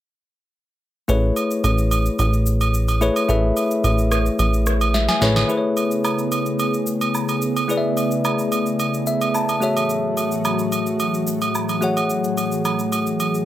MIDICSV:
0, 0, Header, 1, 5, 480
1, 0, Start_track
1, 0, Key_signature, 3, "major"
1, 0, Tempo, 550459
1, 950, Time_signature, 4, 2, 24, 8
1, 11728, End_track
2, 0, Start_track
2, 0, Title_t, "Tine electric piano"
2, 0, Program_c, 0, 4
2, 943, Note_on_c, 0, 57, 79
2, 947, Note_on_c, 0, 64, 75
2, 950, Note_on_c, 0, 68, 76
2, 953, Note_on_c, 0, 71, 71
2, 956, Note_on_c, 0, 73, 87
2, 1108, Control_c, 0, 64, 127
2, 1717, Note_off_c, 0, 57, 0
2, 1718, Note_off_c, 0, 64, 0
2, 1720, Note_off_c, 0, 68, 0
2, 1722, Note_off_c, 0, 71, 0
2, 1723, Note_off_c, 0, 73, 0
2, 2624, Note_on_c, 0, 57, 83
2, 2627, Note_on_c, 0, 64, 77
2, 2630, Note_on_c, 0, 68, 77
2, 2634, Note_on_c, 0, 71, 79
2, 2637, Note_on_c, 0, 73, 91
2, 2821, Note_off_c, 0, 57, 0
2, 2822, Note_off_c, 0, 64, 0
2, 2824, Note_off_c, 0, 68, 0
2, 2826, Note_off_c, 0, 71, 0
2, 2828, Note_off_c, 0, 73, 0
2, 2864, Note_on_c, 0, 57, 78
2, 2867, Note_on_c, 0, 64, 76
2, 2871, Note_on_c, 0, 68, 74
2, 2874, Note_on_c, 0, 71, 75
2, 2877, Note_on_c, 0, 76, 87
2, 3637, Note_off_c, 0, 57, 0
2, 3639, Note_off_c, 0, 64, 0
2, 3640, Note_off_c, 0, 68, 0
2, 3642, Note_off_c, 0, 71, 0
2, 3644, Note_off_c, 0, 76, 0
2, 4310, Note_on_c, 0, 76, 72
2, 4426, Note_off_c, 0, 76, 0
2, 4435, Note_on_c, 0, 80, 74
2, 4545, Note_on_c, 0, 57, 86
2, 4548, Note_on_c, 0, 64, 78
2, 4551, Note_on_c, 0, 68, 82
2, 4555, Note_on_c, 0, 71, 84
2, 4558, Note_on_c, 0, 73, 99
2, 4563, Control_c, 0, 64, 0
2, 4658, Control_c, 0, 64, 127
2, 4741, Note_off_c, 0, 57, 0
2, 4743, Note_off_c, 0, 64, 0
2, 4744, Note_off_c, 0, 68, 0
2, 4746, Note_off_c, 0, 71, 0
2, 4748, Note_off_c, 0, 73, 0
2, 4765, Note_off_c, 0, 80, 0
2, 4778, Note_on_c, 0, 57, 70
2, 4784, Note_on_c, 0, 64, 66
2, 4791, Note_on_c, 0, 68, 66
2, 4797, Note_on_c, 0, 71, 63
2, 4800, Control_c, 0, 64, 0
2, 4804, Note_on_c, 0, 72, 62
2, 4856, Note_off_c, 0, 72, 0
2, 4861, Note_on_c, 0, 73, 76
2, 4938, Control_c, 0, 64, 127
2, 6669, Note_off_c, 0, 57, 0
2, 6672, Note_off_c, 0, 64, 0
2, 6676, Note_off_c, 0, 68, 0
2, 6679, Note_off_c, 0, 71, 0
2, 6697, Note_on_c, 0, 57, 68
2, 6703, Note_on_c, 0, 64, 63
2, 6710, Note_on_c, 0, 68, 68
2, 6711, Note_off_c, 0, 73, 0
2, 6717, Note_on_c, 0, 71, 67
2, 6723, Note_on_c, 0, 74, 64
2, 6776, Note_off_c, 0, 74, 0
2, 6780, Note_on_c, 0, 76, 76
2, 7899, Note_off_c, 0, 76, 0
2, 7910, Note_on_c, 0, 76, 70
2, 8133, Note_off_c, 0, 76, 0
2, 8149, Note_on_c, 0, 81, 71
2, 8350, Note_off_c, 0, 57, 0
2, 8353, Note_off_c, 0, 64, 0
2, 8357, Note_off_c, 0, 68, 0
2, 8360, Note_off_c, 0, 71, 0
2, 8377, Note_on_c, 0, 57, 73
2, 8383, Note_on_c, 0, 66, 67
2, 8389, Note_on_c, 0, 68, 67
2, 8396, Note_on_c, 0, 73, 67
2, 8403, Control_c, 0, 64, 0
2, 8403, Note_on_c, 0, 76, 78
2, 8574, Control_c, 0, 64, 127
2, 8596, Note_off_c, 0, 81, 0
2, 10268, Note_off_c, 0, 57, 0
2, 10272, Note_off_c, 0, 66, 0
2, 10275, Note_off_c, 0, 68, 0
2, 10278, Note_off_c, 0, 73, 0
2, 10282, Note_off_c, 0, 76, 0
2, 10297, Note_on_c, 0, 57, 69
2, 10304, Note_on_c, 0, 66, 70
2, 10311, Note_on_c, 0, 68, 64
2, 10317, Note_on_c, 0, 73, 67
2, 10324, Note_on_c, 0, 78, 79
2, 11728, Note_off_c, 0, 57, 0
2, 11728, Note_off_c, 0, 66, 0
2, 11728, Note_off_c, 0, 68, 0
2, 11728, Note_off_c, 0, 73, 0
2, 11728, Note_off_c, 0, 78, 0
2, 11728, End_track
3, 0, Start_track
3, 0, Title_t, "Analog synth pad"
3, 0, Program_c, 1, 89
3, 4790, Note_on_c, 1, 49, 68
3, 4790, Note_on_c, 1, 57, 63
3, 4790, Note_on_c, 1, 59, 66
3, 4790, Note_on_c, 1, 68, 78
3, 8355, Note_off_c, 1, 49, 0
3, 8355, Note_off_c, 1, 59, 0
3, 8355, Note_off_c, 1, 68, 0
3, 8389, Note_on_c, 1, 45, 71
3, 8389, Note_on_c, 1, 54, 70
3, 8390, Note_on_c, 1, 52, 67
3, 8390, Note_on_c, 1, 66, 80
3, 10291, Note_off_c, 1, 66, 0
3, 10310, Note_on_c, 1, 68, 81
3, 11728, Note_off_c, 1, 45, 0
3, 11728, Note_off_c, 1, 52, 0
3, 11728, Note_off_c, 1, 54, 0
3, 11728, Note_off_c, 1, 57, 0
3, 11728, Note_off_c, 1, 68, 0
3, 11728, End_track
4, 0, Start_track
4, 0, Title_t, "Analog synth bass"
4, 0, Program_c, 2, 38
4, 950, Note_on_c, 2, 33, 100
4, 1149, Note_off_c, 2, 33, 0
4, 1431, Note_on_c, 2, 33, 91
4, 1829, Note_off_c, 2, 33, 0
4, 1911, Note_on_c, 2, 33, 89
4, 2707, Note_off_c, 2, 33, 0
4, 2870, Note_on_c, 2, 33, 98
4, 3069, Note_off_c, 2, 33, 0
4, 3350, Note_on_c, 2, 33, 90
4, 3748, Note_off_c, 2, 33, 0
4, 3830, Note_on_c, 2, 33, 88
4, 4427, Note_off_c, 2, 33, 0
4, 4550, Note_on_c, 2, 33, 94
4, 4749, Note_off_c, 2, 33, 0
4, 11728, End_track
5, 0, Start_track
5, 0, Title_t, "Drums"
5, 949, Note_on_c, 9, 82, 69
5, 1037, Note_off_c, 9, 82, 0
5, 1189, Note_on_c, 9, 67, 52
5, 1191, Note_on_c, 9, 82, 88
5, 1277, Note_off_c, 9, 67, 0
5, 1279, Note_off_c, 9, 82, 0
5, 1316, Note_on_c, 9, 82, 57
5, 1403, Note_off_c, 9, 82, 0
5, 1431, Note_on_c, 9, 67, 74
5, 1431, Note_on_c, 9, 82, 68
5, 1518, Note_off_c, 9, 67, 0
5, 1518, Note_off_c, 9, 82, 0
5, 1554, Note_on_c, 9, 82, 48
5, 1642, Note_off_c, 9, 82, 0
5, 1668, Note_on_c, 9, 67, 66
5, 1671, Note_on_c, 9, 82, 89
5, 1756, Note_off_c, 9, 67, 0
5, 1758, Note_off_c, 9, 82, 0
5, 1794, Note_on_c, 9, 82, 47
5, 1881, Note_off_c, 9, 82, 0
5, 1910, Note_on_c, 9, 67, 70
5, 1910, Note_on_c, 9, 82, 69
5, 1997, Note_off_c, 9, 67, 0
5, 1997, Note_off_c, 9, 82, 0
5, 2036, Note_on_c, 9, 82, 45
5, 2123, Note_off_c, 9, 82, 0
5, 2148, Note_on_c, 9, 82, 104
5, 2236, Note_off_c, 9, 82, 0
5, 2275, Note_on_c, 9, 82, 53
5, 2276, Note_on_c, 9, 67, 71
5, 2362, Note_off_c, 9, 82, 0
5, 2363, Note_off_c, 9, 67, 0
5, 2391, Note_on_c, 9, 82, 75
5, 2478, Note_off_c, 9, 82, 0
5, 2514, Note_on_c, 9, 82, 51
5, 2515, Note_on_c, 9, 67, 62
5, 2601, Note_off_c, 9, 82, 0
5, 2603, Note_off_c, 9, 67, 0
5, 2629, Note_on_c, 9, 82, 71
5, 2716, Note_off_c, 9, 82, 0
5, 2757, Note_on_c, 9, 67, 69
5, 2758, Note_on_c, 9, 82, 57
5, 2844, Note_off_c, 9, 67, 0
5, 2846, Note_off_c, 9, 82, 0
5, 2870, Note_on_c, 9, 82, 68
5, 2957, Note_off_c, 9, 82, 0
5, 3110, Note_on_c, 9, 67, 52
5, 3111, Note_on_c, 9, 82, 85
5, 3197, Note_off_c, 9, 67, 0
5, 3198, Note_off_c, 9, 82, 0
5, 3236, Note_on_c, 9, 82, 57
5, 3323, Note_off_c, 9, 82, 0
5, 3351, Note_on_c, 9, 67, 72
5, 3351, Note_on_c, 9, 82, 64
5, 3438, Note_off_c, 9, 67, 0
5, 3438, Note_off_c, 9, 82, 0
5, 3474, Note_on_c, 9, 82, 46
5, 3562, Note_off_c, 9, 82, 0
5, 3588, Note_on_c, 9, 37, 83
5, 3589, Note_on_c, 9, 67, 69
5, 3591, Note_on_c, 9, 82, 91
5, 3676, Note_off_c, 9, 37, 0
5, 3676, Note_off_c, 9, 67, 0
5, 3678, Note_off_c, 9, 82, 0
5, 3714, Note_on_c, 9, 82, 51
5, 3802, Note_off_c, 9, 82, 0
5, 3829, Note_on_c, 9, 82, 71
5, 3830, Note_on_c, 9, 67, 70
5, 3917, Note_off_c, 9, 67, 0
5, 3917, Note_off_c, 9, 82, 0
5, 3956, Note_on_c, 9, 82, 45
5, 4043, Note_off_c, 9, 82, 0
5, 4068, Note_on_c, 9, 82, 100
5, 4070, Note_on_c, 9, 37, 87
5, 4155, Note_off_c, 9, 82, 0
5, 4157, Note_off_c, 9, 37, 0
5, 4195, Note_on_c, 9, 82, 54
5, 4196, Note_on_c, 9, 67, 74
5, 4282, Note_off_c, 9, 82, 0
5, 4283, Note_off_c, 9, 67, 0
5, 4310, Note_on_c, 9, 38, 53
5, 4311, Note_on_c, 9, 82, 72
5, 4397, Note_off_c, 9, 38, 0
5, 4399, Note_off_c, 9, 82, 0
5, 4434, Note_on_c, 9, 82, 53
5, 4435, Note_on_c, 9, 38, 61
5, 4436, Note_on_c, 9, 67, 61
5, 4521, Note_off_c, 9, 82, 0
5, 4522, Note_off_c, 9, 38, 0
5, 4523, Note_off_c, 9, 67, 0
5, 4549, Note_on_c, 9, 82, 73
5, 4550, Note_on_c, 9, 38, 81
5, 4636, Note_off_c, 9, 82, 0
5, 4637, Note_off_c, 9, 38, 0
5, 4675, Note_on_c, 9, 38, 82
5, 4676, Note_on_c, 9, 67, 72
5, 4678, Note_on_c, 9, 82, 59
5, 4762, Note_off_c, 9, 38, 0
5, 4763, Note_off_c, 9, 67, 0
5, 4765, Note_off_c, 9, 82, 0
5, 4790, Note_on_c, 9, 82, 65
5, 4877, Note_off_c, 9, 82, 0
5, 5030, Note_on_c, 9, 67, 52
5, 5031, Note_on_c, 9, 82, 83
5, 5117, Note_off_c, 9, 67, 0
5, 5119, Note_off_c, 9, 82, 0
5, 5156, Note_on_c, 9, 82, 54
5, 5243, Note_off_c, 9, 82, 0
5, 5271, Note_on_c, 9, 67, 72
5, 5271, Note_on_c, 9, 77, 70
5, 5271, Note_on_c, 9, 82, 65
5, 5358, Note_off_c, 9, 82, 0
5, 5359, Note_off_c, 9, 67, 0
5, 5359, Note_off_c, 9, 77, 0
5, 5394, Note_on_c, 9, 82, 46
5, 5481, Note_off_c, 9, 82, 0
5, 5509, Note_on_c, 9, 67, 67
5, 5511, Note_on_c, 9, 82, 90
5, 5596, Note_off_c, 9, 67, 0
5, 5598, Note_off_c, 9, 82, 0
5, 5634, Note_on_c, 9, 82, 48
5, 5721, Note_off_c, 9, 82, 0
5, 5750, Note_on_c, 9, 82, 69
5, 5751, Note_on_c, 9, 67, 67
5, 5837, Note_off_c, 9, 82, 0
5, 5838, Note_off_c, 9, 67, 0
5, 5876, Note_on_c, 9, 82, 43
5, 5963, Note_off_c, 9, 82, 0
5, 5988, Note_on_c, 9, 82, 99
5, 6076, Note_off_c, 9, 82, 0
5, 6115, Note_on_c, 9, 82, 53
5, 6116, Note_on_c, 9, 67, 71
5, 6202, Note_off_c, 9, 82, 0
5, 6203, Note_off_c, 9, 67, 0
5, 6231, Note_on_c, 9, 82, 72
5, 6232, Note_on_c, 9, 77, 69
5, 6318, Note_off_c, 9, 82, 0
5, 6319, Note_off_c, 9, 77, 0
5, 6354, Note_on_c, 9, 82, 53
5, 6356, Note_on_c, 9, 67, 58
5, 6441, Note_off_c, 9, 82, 0
5, 6443, Note_off_c, 9, 67, 0
5, 6469, Note_on_c, 9, 82, 74
5, 6556, Note_off_c, 9, 82, 0
5, 6597, Note_on_c, 9, 67, 71
5, 6598, Note_on_c, 9, 82, 55
5, 6684, Note_off_c, 9, 67, 0
5, 6685, Note_off_c, 9, 82, 0
5, 6710, Note_on_c, 9, 82, 67
5, 6797, Note_off_c, 9, 82, 0
5, 6950, Note_on_c, 9, 67, 52
5, 6952, Note_on_c, 9, 82, 86
5, 7037, Note_off_c, 9, 67, 0
5, 7039, Note_off_c, 9, 82, 0
5, 7075, Note_on_c, 9, 82, 57
5, 7163, Note_off_c, 9, 82, 0
5, 7191, Note_on_c, 9, 82, 63
5, 7192, Note_on_c, 9, 67, 74
5, 7192, Note_on_c, 9, 77, 74
5, 7278, Note_off_c, 9, 82, 0
5, 7279, Note_off_c, 9, 67, 0
5, 7279, Note_off_c, 9, 77, 0
5, 7314, Note_on_c, 9, 82, 46
5, 7401, Note_off_c, 9, 82, 0
5, 7428, Note_on_c, 9, 67, 64
5, 7430, Note_on_c, 9, 82, 86
5, 7516, Note_off_c, 9, 67, 0
5, 7517, Note_off_c, 9, 82, 0
5, 7554, Note_on_c, 9, 82, 46
5, 7641, Note_off_c, 9, 82, 0
5, 7669, Note_on_c, 9, 82, 67
5, 7670, Note_on_c, 9, 67, 69
5, 7757, Note_off_c, 9, 67, 0
5, 7757, Note_off_c, 9, 82, 0
5, 7796, Note_on_c, 9, 82, 43
5, 7883, Note_off_c, 9, 82, 0
5, 7908, Note_on_c, 9, 82, 101
5, 7995, Note_off_c, 9, 82, 0
5, 8035, Note_on_c, 9, 67, 68
5, 8035, Note_on_c, 9, 82, 52
5, 8122, Note_off_c, 9, 82, 0
5, 8123, Note_off_c, 9, 67, 0
5, 8151, Note_on_c, 9, 82, 74
5, 8152, Note_on_c, 9, 77, 66
5, 8238, Note_off_c, 9, 82, 0
5, 8239, Note_off_c, 9, 77, 0
5, 8274, Note_on_c, 9, 82, 50
5, 8276, Note_on_c, 9, 67, 63
5, 8361, Note_off_c, 9, 82, 0
5, 8363, Note_off_c, 9, 67, 0
5, 8389, Note_on_c, 9, 82, 71
5, 8476, Note_off_c, 9, 82, 0
5, 8516, Note_on_c, 9, 67, 73
5, 8518, Note_on_c, 9, 82, 58
5, 8603, Note_off_c, 9, 67, 0
5, 8606, Note_off_c, 9, 82, 0
5, 8630, Note_on_c, 9, 82, 63
5, 8717, Note_off_c, 9, 82, 0
5, 8870, Note_on_c, 9, 67, 52
5, 8871, Note_on_c, 9, 82, 88
5, 8957, Note_off_c, 9, 67, 0
5, 8959, Note_off_c, 9, 82, 0
5, 8995, Note_on_c, 9, 82, 55
5, 9082, Note_off_c, 9, 82, 0
5, 9111, Note_on_c, 9, 67, 73
5, 9111, Note_on_c, 9, 77, 72
5, 9111, Note_on_c, 9, 82, 64
5, 9198, Note_off_c, 9, 67, 0
5, 9198, Note_off_c, 9, 77, 0
5, 9198, Note_off_c, 9, 82, 0
5, 9234, Note_on_c, 9, 82, 47
5, 9321, Note_off_c, 9, 82, 0
5, 9350, Note_on_c, 9, 67, 67
5, 9350, Note_on_c, 9, 82, 90
5, 9437, Note_off_c, 9, 67, 0
5, 9438, Note_off_c, 9, 82, 0
5, 9475, Note_on_c, 9, 82, 47
5, 9562, Note_off_c, 9, 82, 0
5, 9589, Note_on_c, 9, 82, 66
5, 9590, Note_on_c, 9, 67, 69
5, 9677, Note_off_c, 9, 67, 0
5, 9677, Note_off_c, 9, 82, 0
5, 9716, Note_on_c, 9, 82, 44
5, 9803, Note_off_c, 9, 82, 0
5, 9828, Note_on_c, 9, 82, 102
5, 9915, Note_off_c, 9, 82, 0
5, 9955, Note_on_c, 9, 82, 51
5, 9956, Note_on_c, 9, 67, 73
5, 10042, Note_off_c, 9, 82, 0
5, 10043, Note_off_c, 9, 67, 0
5, 10071, Note_on_c, 9, 82, 75
5, 10072, Note_on_c, 9, 77, 70
5, 10158, Note_off_c, 9, 82, 0
5, 10159, Note_off_c, 9, 77, 0
5, 10194, Note_on_c, 9, 82, 52
5, 10196, Note_on_c, 9, 67, 64
5, 10281, Note_off_c, 9, 82, 0
5, 10283, Note_off_c, 9, 67, 0
5, 10308, Note_on_c, 9, 82, 72
5, 10395, Note_off_c, 9, 82, 0
5, 10437, Note_on_c, 9, 67, 69
5, 10438, Note_on_c, 9, 82, 57
5, 10524, Note_off_c, 9, 67, 0
5, 10526, Note_off_c, 9, 82, 0
5, 10550, Note_on_c, 9, 82, 64
5, 10637, Note_off_c, 9, 82, 0
5, 10676, Note_on_c, 9, 82, 55
5, 10763, Note_off_c, 9, 82, 0
5, 10791, Note_on_c, 9, 67, 51
5, 10792, Note_on_c, 9, 82, 85
5, 10878, Note_off_c, 9, 67, 0
5, 10879, Note_off_c, 9, 82, 0
5, 10916, Note_on_c, 9, 82, 54
5, 11003, Note_off_c, 9, 82, 0
5, 11031, Note_on_c, 9, 82, 67
5, 11032, Note_on_c, 9, 67, 73
5, 11032, Note_on_c, 9, 77, 72
5, 11118, Note_off_c, 9, 82, 0
5, 11119, Note_off_c, 9, 67, 0
5, 11119, Note_off_c, 9, 77, 0
5, 11155, Note_on_c, 9, 82, 48
5, 11242, Note_off_c, 9, 82, 0
5, 11269, Note_on_c, 9, 67, 68
5, 11271, Note_on_c, 9, 82, 91
5, 11357, Note_off_c, 9, 67, 0
5, 11358, Note_off_c, 9, 82, 0
5, 11395, Note_on_c, 9, 82, 49
5, 11482, Note_off_c, 9, 82, 0
5, 11510, Note_on_c, 9, 82, 68
5, 11511, Note_on_c, 9, 67, 67
5, 11597, Note_off_c, 9, 82, 0
5, 11598, Note_off_c, 9, 67, 0
5, 11636, Note_on_c, 9, 82, 44
5, 11723, Note_off_c, 9, 82, 0
5, 11728, End_track
0, 0, End_of_file